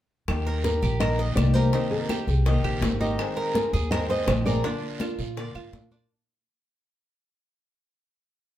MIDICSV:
0, 0, Header, 1, 7, 480
1, 0, Start_track
1, 0, Key_signature, -3, "major"
1, 0, Tempo, 363636
1, 375, Time_signature, 4, 2, 24, 8
1, 11314, End_track
2, 0, Start_track
2, 0, Title_t, "Nylon-string guitar"
2, 0, Program_c, 0, 24
2, 849, Note_on_c, 0, 70, 79
2, 1298, Note_off_c, 0, 70, 0
2, 1320, Note_on_c, 0, 75, 101
2, 1785, Note_off_c, 0, 75, 0
2, 1790, Note_on_c, 0, 74, 92
2, 2027, Note_off_c, 0, 74, 0
2, 2027, Note_on_c, 0, 72, 96
2, 2517, Note_on_c, 0, 70, 78
2, 2520, Note_off_c, 0, 72, 0
2, 3045, Note_off_c, 0, 70, 0
2, 3045, Note_on_c, 0, 68, 78
2, 3193, Note_off_c, 0, 68, 0
2, 4677, Note_on_c, 0, 70, 87
2, 5128, Note_off_c, 0, 70, 0
2, 5158, Note_on_c, 0, 75, 111
2, 5385, Note_off_c, 0, 75, 0
2, 5405, Note_on_c, 0, 72, 92
2, 5625, Note_off_c, 0, 72, 0
2, 5641, Note_on_c, 0, 72, 89
2, 5707, Note_off_c, 0, 72, 0
2, 5881, Note_on_c, 0, 74, 96
2, 7563, Note_off_c, 0, 74, 0
2, 11314, End_track
3, 0, Start_track
3, 0, Title_t, "Cuban tres"
3, 0, Program_c, 1, 25
3, 616, Note_on_c, 1, 70, 71
3, 1081, Note_off_c, 1, 70, 0
3, 1092, Note_on_c, 1, 67, 64
3, 1326, Note_off_c, 1, 67, 0
3, 1334, Note_on_c, 1, 70, 66
3, 1567, Note_off_c, 1, 70, 0
3, 1573, Note_on_c, 1, 75, 72
3, 2039, Note_off_c, 1, 75, 0
3, 2050, Note_on_c, 1, 70, 66
3, 2284, Note_off_c, 1, 70, 0
3, 2293, Note_on_c, 1, 63, 70
3, 2758, Note_off_c, 1, 63, 0
3, 2770, Note_on_c, 1, 67, 68
3, 3236, Note_off_c, 1, 67, 0
3, 3250, Note_on_c, 1, 75, 66
3, 3483, Note_off_c, 1, 75, 0
3, 3487, Note_on_c, 1, 67, 71
3, 3954, Note_off_c, 1, 67, 0
3, 3967, Note_on_c, 1, 63, 71
3, 4433, Note_off_c, 1, 63, 0
3, 4444, Note_on_c, 1, 70, 71
3, 4911, Note_off_c, 1, 70, 0
3, 4930, Note_on_c, 1, 68, 70
3, 5161, Note_off_c, 1, 68, 0
3, 5173, Note_on_c, 1, 70, 69
3, 5403, Note_off_c, 1, 70, 0
3, 5413, Note_on_c, 1, 75, 71
3, 5875, Note_off_c, 1, 75, 0
3, 5894, Note_on_c, 1, 70, 66
3, 6123, Note_off_c, 1, 70, 0
3, 6133, Note_on_c, 1, 62, 74
3, 6595, Note_off_c, 1, 62, 0
3, 6610, Note_on_c, 1, 65, 63
3, 7073, Note_off_c, 1, 65, 0
3, 7094, Note_on_c, 1, 74, 61
3, 7323, Note_off_c, 1, 74, 0
3, 7327, Note_on_c, 1, 65, 70
3, 7793, Note_off_c, 1, 65, 0
3, 7810, Note_on_c, 1, 62, 77
3, 8042, Note_off_c, 1, 62, 0
3, 11314, End_track
4, 0, Start_track
4, 0, Title_t, "Steel-string acoustic guitar"
4, 0, Program_c, 2, 25
4, 371, Note_on_c, 2, 51, 71
4, 385, Note_on_c, 2, 58, 66
4, 392, Note_on_c, 2, 63, 67
4, 400, Note_on_c, 2, 67, 71
4, 836, Note_off_c, 2, 51, 0
4, 850, Note_off_c, 2, 58, 0
4, 852, Note_on_c, 2, 51, 41
4, 854, Note_off_c, 2, 63, 0
4, 858, Note_off_c, 2, 67, 0
4, 864, Note_on_c, 2, 58, 47
4, 875, Note_on_c, 2, 63, 51
4, 880, Note_on_c, 2, 67, 43
4, 1084, Note_off_c, 2, 51, 0
4, 1085, Note_off_c, 2, 58, 0
4, 1095, Note_off_c, 2, 63, 0
4, 1098, Note_off_c, 2, 67, 0
4, 1323, Note_on_c, 2, 51, 62
4, 1335, Note_on_c, 2, 58, 66
4, 1349, Note_on_c, 2, 63, 63
4, 1356, Note_on_c, 2, 67, 66
4, 1793, Note_off_c, 2, 51, 0
4, 1805, Note_off_c, 2, 58, 0
4, 1809, Note_on_c, 2, 51, 49
4, 1812, Note_off_c, 2, 63, 0
4, 1815, Note_off_c, 2, 67, 0
4, 1824, Note_on_c, 2, 58, 52
4, 1834, Note_on_c, 2, 63, 58
4, 1840, Note_on_c, 2, 67, 50
4, 2035, Note_off_c, 2, 67, 0
4, 2042, Note_off_c, 2, 51, 0
4, 2049, Note_off_c, 2, 58, 0
4, 2050, Note_on_c, 2, 67, 71
4, 2051, Note_off_c, 2, 63, 0
4, 2067, Note_on_c, 2, 63, 63
4, 2076, Note_on_c, 2, 58, 55
4, 2279, Note_on_c, 2, 48, 68
4, 2282, Note_off_c, 2, 58, 0
4, 2282, Note_off_c, 2, 67, 0
4, 2289, Note_on_c, 2, 51, 79
4, 2290, Note_off_c, 2, 63, 0
4, 2298, Note_on_c, 2, 58, 69
4, 2304, Note_on_c, 2, 60, 81
4, 2309, Note_on_c, 2, 67, 75
4, 2754, Note_off_c, 2, 51, 0
4, 2756, Note_off_c, 2, 48, 0
4, 2762, Note_off_c, 2, 58, 0
4, 2768, Note_off_c, 2, 60, 0
4, 2770, Note_on_c, 2, 51, 44
4, 2771, Note_off_c, 2, 67, 0
4, 2778, Note_on_c, 2, 58, 46
4, 2787, Note_on_c, 2, 60, 51
4, 2798, Note_on_c, 2, 67, 49
4, 2998, Note_off_c, 2, 51, 0
4, 3001, Note_off_c, 2, 58, 0
4, 3002, Note_off_c, 2, 60, 0
4, 3004, Note_off_c, 2, 67, 0
4, 3249, Note_on_c, 2, 48, 68
4, 3262, Note_on_c, 2, 51, 68
4, 3267, Note_on_c, 2, 58, 71
4, 3277, Note_on_c, 2, 60, 73
4, 3283, Note_on_c, 2, 67, 71
4, 3720, Note_off_c, 2, 48, 0
4, 3720, Note_off_c, 2, 51, 0
4, 3729, Note_off_c, 2, 58, 0
4, 3734, Note_off_c, 2, 60, 0
4, 3736, Note_on_c, 2, 51, 48
4, 3737, Note_off_c, 2, 67, 0
4, 3744, Note_on_c, 2, 58, 47
4, 3754, Note_on_c, 2, 60, 49
4, 3766, Note_on_c, 2, 67, 48
4, 3950, Note_off_c, 2, 67, 0
4, 3963, Note_off_c, 2, 51, 0
4, 3963, Note_off_c, 2, 60, 0
4, 3966, Note_on_c, 2, 67, 64
4, 3968, Note_off_c, 2, 58, 0
4, 3978, Note_on_c, 2, 60, 56
4, 3989, Note_on_c, 2, 58, 60
4, 3997, Note_on_c, 2, 51, 60
4, 4186, Note_off_c, 2, 51, 0
4, 4198, Note_off_c, 2, 67, 0
4, 4202, Note_on_c, 2, 51, 72
4, 4204, Note_off_c, 2, 60, 0
4, 4210, Note_off_c, 2, 58, 0
4, 4220, Note_on_c, 2, 56, 78
4, 4226, Note_on_c, 2, 60, 75
4, 4235, Note_on_c, 2, 68, 77
4, 4668, Note_off_c, 2, 51, 0
4, 4681, Note_off_c, 2, 56, 0
4, 4684, Note_on_c, 2, 51, 46
4, 4687, Note_off_c, 2, 60, 0
4, 4692, Note_off_c, 2, 68, 0
4, 4697, Note_on_c, 2, 56, 46
4, 4703, Note_on_c, 2, 60, 47
4, 4712, Note_on_c, 2, 68, 44
4, 4916, Note_off_c, 2, 51, 0
4, 4923, Note_off_c, 2, 56, 0
4, 4926, Note_off_c, 2, 60, 0
4, 4930, Note_off_c, 2, 68, 0
4, 5165, Note_on_c, 2, 51, 72
4, 5179, Note_on_c, 2, 56, 77
4, 5190, Note_on_c, 2, 60, 80
4, 5193, Note_on_c, 2, 68, 67
4, 5636, Note_off_c, 2, 51, 0
4, 5643, Note_off_c, 2, 56, 0
4, 5648, Note_off_c, 2, 60, 0
4, 5650, Note_off_c, 2, 68, 0
4, 5654, Note_on_c, 2, 51, 42
4, 5665, Note_on_c, 2, 56, 56
4, 5675, Note_on_c, 2, 60, 51
4, 5682, Note_on_c, 2, 68, 60
4, 5872, Note_off_c, 2, 68, 0
4, 5881, Note_off_c, 2, 51, 0
4, 5886, Note_off_c, 2, 56, 0
4, 5886, Note_off_c, 2, 60, 0
4, 5888, Note_on_c, 2, 68, 72
4, 5902, Note_on_c, 2, 60, 64
4, 5920, Note_on_c, 2, 56, 46
4, 6117, Note_off_c, 2, 68, 0
4, 6124, Note_off_c, 2, 60, 0
4, 6125, Note_on_c, 2, 50, 75
4, 6133, Note_off_c, 2, 56, 0
4, 6138, Note_on_c, 2, 58, 71
4, 6142, Note_on_c, 2, 62, 81
4, 6157, Note_on_c, 2, 65, 77
4, 6593, Note_off_c, 2, 50, 0
4, 6602, Note_off_c, 2, 58, 0
4, 6604, Note_off_c, 2, 62, 0
4, 6609, Note_on_c, 2, 50, 43
4, 6612, Note_off_c, 2, 65, 0
4, 6617, Note_on_c, 2, 58, 47
4, 6627, Note_on_c, 2, 62, 44
4, 6639, Note_on_c, 2, 65, 49
4, 6838, Note_off_c, 2, 50, 0
4, 6842, Note_off_c, 2, 58, 0
4, 6847, Note_off_c, 2, 62, 0
4, 6853, Note_off_c, 2, 65, 0
4, 7083, Note_on_c, 2, 50, 68
4, 7096, Note_on_c, 2, 58, 66
4, 7108, Note_on_c, 2, 62, 69
4, 7114, Note_on_c, 2, 65, 74
4, 7549, Note_off_c, 2, 50, 0
4, 7562, Note_off_c, 2, 58, 0
4, 7565, Note_on_c, 2, 50, 45
4, 7568, Note_off_c, 2, 62, 0
4, 7571, Note_off_c, 2, 65, 0
4, 7577, Note_on_c, 2, 58, 52
4, 7585, Note_on_c, 2, 62, 46
4, 7597, Note_on_c, 2, 65, 54
4, 7788, Note_off_c, 2, 65, 0
4, 7796, Note_off_c, 2, 50, 0
4, 7802, Note_off_c, 2, 58, 0
4, 7804, Note_on_c, 2, 65, 63
4, 7806, Note_off_c, 2, 62, 0
4, 7820, Note_on_c, 2, 62, 61
4, 7838, Note_on_c, 2, 58, 59
4, 8036, Note_off_c, 2, 65, 0
4, 8044, Note_off_c, 2, 62, 0
4, 8053, Note_off_c, 2, 58, 0
4, 11314, End_track
5, 0, Start_track
5, 0, Title_t, "Upright bass"
5, 0, Program_c, 3, 32
5, 373, Note_on_c, 3, 39, 94
5, 1043, Note_off_c, 3, 39, 0
5, 1089, Note_on_c, 3, 34, 92
5, 1761, Note_off_c, 3, 34, 0
5, 1805, Note_on_c, 3, 36, 82
5, 2233, Note_off_c, 3, 36, 0
5, 3000, Note_on_c, 3, 36, 87
5, 3451, Note_off_c, 3, 36, 0
5, 3474, Note_on_c, 3, 34, 71
5, 3704, Note_off_c, 3, 34, 0
5, 3717, Note_on_c, 3, 32, 89
5, 4146, Note_off_c, 3, 32, 0
5, 4924, Note_on_c, 3, 39, 90
5, 5595, Note_off_c, 3, 39, 0
5, 5639, Note_on_c, 3, 34, 89
5, 6066, Note_off_c, 3, 34, 0
5, 6845, Note_on_c, 3, 46, 86
5, 7292, Note_off_c, 3, 46, 0
5, 7321, Note_on_c, 3, 44, 67
5, 7547, Note_off_c, 3, 44, 0
5, 7559, Note_on_c, 3, 46, 83
5, 7987, Note_off_c, 3, 46, 0
5, 11314, End_track
6, 0, Start_track
6, 0, Title_t, "Muted steel-string acoustic guitar strokes"
6, 1098, Note_on_c, 9, 29, 58
6, 1230, Note_off_c, 9, 29, 0
6, 3005, Note_on_c, 9, 29, 65
6, 3137, Note_off_c, 9, 29, 0
6, 4937, Note_on_c, 9, 29, 65
6, 5069, Note_off_c, 9, 29, 0
6, 6857, Note_on_c, 9, 29, 58
6, 6989, Note_off_c, 9, 29, 0
6, 11314, End_track
7, 0, Start_track
7, 0, Title_t, "Drums"
7, 371, Note_on_c, 9, 60, 64
7, 374, Note_on_c, 9, 74, 63
7, 376, Note_on_c, 9, 63, 33
7, 376, Note_on_c, 9, 75, 61
7, 503, Note_off_c, 9, 60, 0
7, 506, Note_off_c, 9, 74, 0
7, 508, Note_off_c, 9, 63, 0
7, 508, Note_off_c, 9, 75, 0
7, 612, Note_on_c, 9, 60, 33
7, 613, Note_on_c, 9, 63, 35
7, 744, Note_off_c, 9, 60, 0
7, 745, Note_off_c, 9, 63, 0
7, 849, Note_on_c, 9, 63, 78
7, 850, Note_on_c, 9, 60, 56
7, 852, Note_on_c, 9, 73, 64
7, 981, Note_off_c, 9, 63, 0
7, 982, Note_off_c, 9, 60, 0
7, 984, Note_off_c, 9, 73, 0
7, 1087, Note_on_c, 9, 60, 34
7, 1092, Note_on_c, 9, 63, 30
7, 1092, Note_on_c, 9, 73, 62
7, 1219, Note_off_c, 9, 60, 0
7, 1224, Note_off_c, 9, 63, 0
7, 1224, Note_off_c, 9, 73, 0
7, 1327, Note_on_c, 9, 60, 68
7, 1329, Note_on_c, 9, 63, 34
7, 1332, Note_on_c, 9, 74, 68
7, 1338, Note_on_c, 9, 75, 61
7, 1459, Note_off_c, 9, 60, 0
7, 1461, Note_off_c, 9, 63, 0
7, 1464, Note_off_c, 9, 74, 0
7, 1470, Note_off_c, 9, 75, 0
7, 1569, Note_on_c, 9, 60, 32
7, 1572, Note_on_c, 9, 63, 34
7, 1701, Note_off_c, 9, 60, 0
7, 1704, Note_off_c, 9, 63, 0
7, 1809, Note_on_c, 9, 60, 62
7, 1809, Note_on_c, 9, 61, 70
7, 1809, Note_on_c, 9, 73, 73
7, 1813, Note_on_c, 9, 63, 80
7, 1819, Note_on_c, 9, 75, 59
7, 1941, Note_off_c, 9, 60, 0
7, 1941, Note_off_c, 9, 61, 0
7, 1941, Note_off_c, 9, 73, 0
7, 1945, Note_off_c, 9, 63, 0
7, 1951, Note_off_c, 9, 75, 0
7, 2049, Note_on_c, 9, 63, 74
7, 2052, Note_on_c, 9, 73, 67
7, 2181, Note_off_c, 9, 63, 0
7, 2184, Note_off_c, 9, 73, 0
7, 2284, Note_on_c, 9, 60, 65
7, 2288, Note_on_c, 9, 74, 67
7, 2290, Note_on_c, 9, 63, 34
7, 2416, Note_off_c, 9, 60, 0
7, 2420, Note_off_c, 9, 74, 0
7, 2422, Note_off_c, 9, 63, 0
7, 2530, Note_on_c, 9, 63, 30
7, 2662, Note_off_c, 9, 63, 0
7, 2763, Note_on_c, 9, 63, 84
7, 2765, Note_on_c, 9, 60, 61
7, 2771, Note_on_c, 9, 73, 68
7, 2772, Note_on_c, 9, 75, 59
7, 2895, Note_off_c, 9, 63, 0
7, 2897, Note_off_c, 9, 60, 0
7, 2903, Note_off_c, 9, 73, 0
7, 2904, Note_off_c, 9, 75, 0
7, 3002, Note_on_c, 9, 63, 32
7, 3006, Note_on_c, 9, 60, 34
7, 3011, Note_on_c, 9, 73, 67
7, 3134, Note_off_c, 9, 63, 0
7, 3138, Note_off_c, 9, 60, 0
7, 3143, Note_off_c, 9, 73, 0
7, 3243, Note_on_c, 9, 63, 34
7, 3243, Note_on_c, 9, 74, 61
7, 3249, Note_on_c, 9, 60, 64
7, 3375, Note_off_c, 9, 63, 0
7, 3375, Note_off_c, 9, 74, 0
7, 3381, Note_off_c, 9, 60, 0
7, 3481, Note_on_c, 9, 63, 33
7, 3490, Note_on_c, 9, 60, 31
7, 3493, Note_on_c, 9, 75, 54
7, 3613, Note_off_c, 9, 63, 0
7, 3622, Note_off_c, 9, 60, 0
7, 3625, Note_off_c, 9, 75, 0
7, 3716, Note_on_c, 9, 63, 84
7, 3728, Note_on_c, 9, 60, 65
7, 3728, Note_on_c, 9, 61, 85
7, 3731, Note_on_c, 9, 73, 72
7, 3848, Note_off_c, 9, 63, 0
7, 3860, Note_off_c, 9, 60, 0
7, 3860, Note_off_c, 9, 61, 0
7, 3863, Note_off_c, 9, 73, 0
7, 3968, Note_on_c, 9, 63, 71
7, 3970, Note_on_c, 9, 73, 62
7, 3975, Note_on_c, 9, 60, 31
7, 4100, Note_off_c, 9, 63, 0
7, 4102, Note_off_c, 9, 73, 0
7, 4107, Note_off_c, 9, 60, 0
7, 4211, Note_on_c, 9, 75, 60
7, 4212, Note_on_c, 9, 60, 62
7, 4215, Note_on_c, 9, 63, 31
7, 4215, Note_on_c, 9, 74, 66
7, 4343, Note_off_c, 9, 75, 0
7, 4344, Note_off_c, 9, 60, 0
7, 4347, Note_off_c, 9, 63, 0
7, 4347, Note_off_c, 9, 74, 0
7, 4451, Note_on_c, 9, 63, 33
7, 4455, Note_on_c, 9, 60, 31
7, 4583, Note_off_c, 9, 63, 0
7, 4587, Note_off_c, 9, 60, 0
7, 4689, Note_on_c, 9, 63, 94
7, 4690, Note_on_c, 9, 60, 60
7, 4693, Note_on_c, 9, 73, 66
7, 4821, Note_off_c, 9, 63, 0
7, 4822, Note_off_c, 9, 60, 0
7, 4825, Note_off_c, 9, 73, 0
7, 4929, Note_on_c, 9, 63, 33
7, 4932, Note_on_c, 9, 60, 34
7, 4935, Note_on_c, 9, 73, 66
7, 5061, Note_off_c, 9, 63, 0
7, 5064, Note_off_c, 9, 60, 0
7, 5067, Note_off_c, 9, 73, 0
7, 5174, Note_on_c, 9, 60, 72
7, 5174, Note_on_c, 9, 63, 36
7, 5175, Note_on_c, 9, 74, 71
7, 5175, Note_on_c, 9, 75, 69
7, 5306, Note_off_c, 9, 60, 0
7, 5306, Note_off_c, 9, 63, 0
7, 5307, Note_off_c, 9, 74, 0
7, 5307, Note_off_c, 9, 75, 0
7, 5409, Note_on_c, 9, 60, 30
7, 5412, Note_on_c, 9, 63, 32
7, 5541, Note_off_c, 9, 60, 0
7, 5544, Note_off_c, 9, 63, 0
7, 5646, Note_on_c, 9, 60, 70
7, 5646, Note_on_c, 9, 61, 82
7, 5650, Note_on_c, 9, 73, 63
7, 5651, Note_on_c, 9, 75, 54
7, 5653, Note_on_c, 9, 63, 82
7, 5778, Note_off_c, 9, 60, 0
7, 5778, Note_off_c, 9, 61, 0
7, 5782, Note_off_c, 9, 73, 0
7, 5783, Note_off_c, 9, 75, 0
7, 5785, Note_off_c, 9, 63, 0
7, 5892, Note_on_c, 9, 73, 64
7, 5895, Note_on_c, 9, 63, 77
7, 6024, Note_off_c, 9, 73, 0
7, 6027, Note_off_c, 9, 63, 0
7, 6126, Note_on_c, 9, 63, 32
7, 6127, Note_on_c, 9, 60, 63
7, 6128, Note_on_c, 9, 74, 65
7, 6258, Note_off_c, 9, 63, 0
7, 6259, Note_off_c, 9, 60, 0
7, 6260, Note_off_c, 9, 74, 0
7, 6364, Note_on_c, 9, 63, 33
7, 6496, Note_off_c, 9, 63, 0
7, 6599, Note_on_c, 9, 63, 87
7, 6608, Note_on_c, 9, 60, 58
7, 6611, Note_on_c, 9, 73, 72
7, 6615, Note_on_c, 9, 75, 60
7, 6731, Note_off_c, 9, 63, 0
7, 6740, Note_off_c, 9, 60, 0
7, 6743, Note_off_c, 9, 73, 0
7, 6747, Note_off_c, 9, 75, 0
7, 6844, Note_on_c, 9, 63, 33
7, 6846, Note_on_c, 9, 73, 69
7, 6848, Note_on_c, 9, 60, 36
7, 6976, Note_off_c, 9, 63, 0
7, 6978, Note_off_c, 9, 73, 0
7, 6980, Note_off_c, 9, 60, 0
7, 7085, Note_on_c, 9, 63, 32
7, 7087, Note_on_c, 9, 74, 64
7, 7093, Note_on_c, 9, 60, 70
7, 7217, Note_off_c, 9, 63, 0
7, 7219, Note_off_c, 9, 74, 0
7, 7225, Note_off_c, 9, 60, 0
7, 7324, Note_on_c, 9, 63, 32
7, 7331, Note_on_c, 9, 60, 30
7, 7334, Note_on_c, 9, 75, 63
7, 7456, Note_off_c, 9, 63, 0
7, 7463, Note_off_c, 9, 60, 0
7, 7466, Note_off_c, 9, 75, 0
7, 7565, Note_on_c, 9, 73, 73
7, 7568, Note_on_c, 9, 63, 85
7, 7569, Note_on_c, 9, 60, 66
7, 7569, Note_on_c, 9, 61, 77
7, 7697, Note_off_c, 9, 73, 0
7, 7700, Note_off_c, 9, 63, 0
7, 7701, Note_off_c, 9, 60, 0
7, 7701, Note_off_c, 9, 61, 0
7, 7804, Note_on_c, 9, 60, 28
7, 7805, Note_on_c, 9, 63, 70
7, 7806, Note_on_c, 9, 73, 68
7, 7936, Note_off_c, 9, 60, 0
7, 7937, Note_off_c, 9, 63, 0
7, 7938, Note_off_c, 9, 73, 0
7, 11314, End_track
0, 0, End_of_file